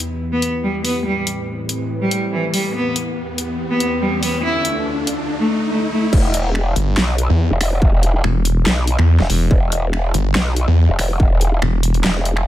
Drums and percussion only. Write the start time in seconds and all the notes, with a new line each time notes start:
0.00 closed hi-hat
0.42 closed hi-hat
0.85 open hi-hat
1.27 closed hi-hat
1.69 closed hi-hat
2.11 closed hi-hat
2.54 open hi-hat
2.96 closed hi-hat
3.38 closed hi-hat
3.80 closed hi-hat
4.23 open hi-hat
4.65 closed hi-hat
5.07 closed hi-hat
6.13 kick, crash
6.34 closed hi-hat
6.55 finger snap
6.76 closed hi-hat
6.97 snare, clap
7.18 closed hi-hat
7.61 finger snap, open hi-hat
7.82 kick
8.03 closed hi-hat
8.24 finger snap
8.45 closed hi-hat
8.66 snare, clap
8.87 closed hi-hat
8.99 finger snap
9.20 snare
9.30 open hi-hat
9.51 kick
9.72 closed hi-hat
9.93 finger snap
10.14 closed hi-hat
10.35 snare, clap
10.56 closed hi-hat
10.99 finger snap, open hi-hat
11.20 kick
11.41 closed hi-hat
11.62 finger snap
11.83 closed hi-hat
11.94 closed hi-hat
12.04 snare, clap
12.25 closed hi-hat
12.37 finger snap